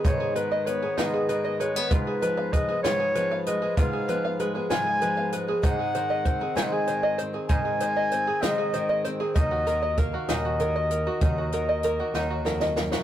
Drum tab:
HH |x-x-x-x-x-x-|x-x-x-x-x-x-|x-x-x-x-x-x-|x-x-x-x-x-x-|
SD |------o-----|------o-----|------o-----|------o-----|
BD |o-----------|o---o-------|o-----------|o---o-------|

HH |x-x-x-x-x-x-|x-x-x-x-x-x-|x-x-x-------|
SD |------o-----|------o-----|------o-oooo|
BD |o-----------|o---o-------|o-----------|